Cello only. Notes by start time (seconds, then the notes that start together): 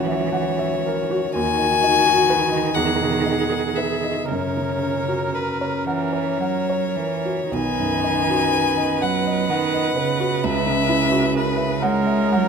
Already playing: E3
1.32 D#3
4.27 C#3
5.84 E3
6.39 F#3
6.95 E3
7.51 D#3
9.02 F#3
9.50 D#3
9.98 C#3
11.83 G#3
12.35 F#3